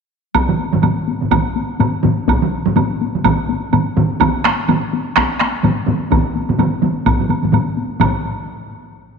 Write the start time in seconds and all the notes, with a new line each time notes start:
0.35 taiko, taiko high, high woodblock
0.48 taiko low-mid, taiko mid
0.59 taiko high
0.73 taiko low-mid, taiko mid, taiko high
0.82 taiko low-mid, taiko mid, taiko high, high woodblock
0.98 taiko high
1.08 taiko high
1.21 taiko low-mid, taiko mid, taiko high
1.31 taiko, taiko low-mid, taiko mid, taiko high, high woodblock
1.46 taiko high
1.56 taiko high
1.80 taiko low-mid, taiko mid, taiko high, high woodblock
1.94 taiko high
2.04 taiko low-mid, taiko mid, taiko high
2.18 taiko high
2.28 taiko, taiko high, high woodblock
2.42 taiko low-mid, taiko mid, taiko high
2.66 taiko low-mid, taiko mid, taiko high
2.76 taiko low-mid, taiko mid, taiko high, high woodblock
2.92 taiko high
3.01 taiko high
3.15 taiko low-mid, taiko mid, taiko high
3.24 taiko, taiko low-mid, taiko mid, taiko high, high woodblock
3.40 taiko high
3.49 taiko high
3.73 taiko low-mid, taiko mid, taiko high, high woodblock
3.88 taiko high
3.96 taiko low-mid, taiko mid, taiko high
4.12 taiko high
4.20 taiko, taiko low-mid, taiko mid, taiko high, high woodblock
4.36 taiko high
4.44 taiko rim, taiko high
4.59 taiko high
4.68 taiko low-mid, taiko mid, taiko high, high woodblock
4.84 taiko high
4.93 taiko high
5.07 taiko high
5.16 taiko rim, taiko, taiko high, high woodblock
5.32 taiko high
5.39 taiko rim, taiko high
5.63 taiko low-mid, taiko mid, taiko high, high woodblock
5.79 taiko high
5.87 taiko low-mid, taiko mid, taiko high
6.03 taiko high
6.11 taiko, taiko low-mid, taiko mid, taiko high, high woodblock
6.26 taiko high
6.36 taiko high
6.49 taiko low-mid, taiko mid, taiko high
6.59 taiko low-mid, taiko mid, taiko high, high woodblock
6.73 taiko high
6.82 taiko low-mid, taiko mid, taiko high
6.97 taiko high
7.05 taiko, taiko low-mid, taiko mid, taiko high, high woodblock
7.20 taiko low-mid, taiko mid, taiko high
7.29 taiko low-mid, taiko mid, taiko high, high woodblock
7.43 taiko low-mid, taiko mid, taiko high
7.52 taiko low-mid, taiko mid, taiko high, high woodblock
7.68 taiko high
7.77 taiko high
7.91 taiko high
8.00 taiko, taiko low-mid, taiko mid, taiko high, high woodblock